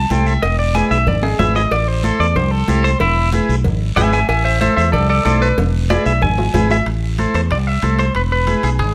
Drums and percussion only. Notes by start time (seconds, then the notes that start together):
0.10 cowbell, high conga, short guiro
0.26 short guiro
0.43 cowbell, high conga, long guiro
0.75 cowbell, high conga, short guiro
0.91 short guiro
1.07 cowbell, high conga, low conga, long guiro
1.23 high timbale
1.39 cowbell, high conga, low conga, low timbale, short guiro
1.55 low timbale, short guiro
1.71 cowbell, high conga, long guiro
2.04 cowbell, high conga, short guiro
2.21 short guiro
2.36 cowbell, high conga, low conga, long guiro
2.68 cowbell, high conga, short guiro
2.85 short guiro
3.00 cowbell, high conga, low conga, long guiro
3.32 cowbell, high conga, short guiro
3.50 short guiro
3.64 cowbell, high conga, low conga, long guiro
3.97 cowbell, high conga, low conga, low timbale, short guiro
4.13 short guiro
4.29 cowbell, long guiro
4.61 cowbell, high conga, short guiro
4.78 short guiro
4.93 cowbell, high conga, low conga, long guiro
5.26 cowbell, high conga, short guiro
5.42 short guiro
5.58 cowbell, high conga, low conga, high timbale, long guiro
5.90 cowbell, high conga, low timbale, short guiro
6.06 short guiro
6.22 cowbell, high conga, low conga, long guiro
6.38 low timbale
6.54 cowbell, high conga, low conga, low timbale, short guiro
6.70 low timbale, short guiro
6.86 high conga, high timbale, long guiro
7.19 high conga, high timbale, short guiro
7.34 high timbale, short guiro
7.51 high timbale, long guiro
7.82 high conga, high timbale, short guiro
7.99 high timbale, short guiro
8.15 high conga, high timbale, long guiro
8.47 high conga, high timbale, short guiro
8.63 high timbale, short guiro
8.79 high timbale, long guiro